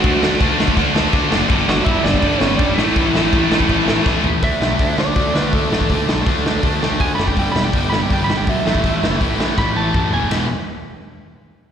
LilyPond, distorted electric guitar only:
\new Staff \with { instrumentName = "Distorted electric guitar" } { \clef bass \time 4/4 \key d \lydian \tempo 4 = 163 <d a d'>2 <d a d'>2 | <g, d g>2 <g, d g>4. <a, e a>8~ | <a, e a>4. <a, e a>2 r8 | r1 |
r1 | r1 | r1 | r1 | }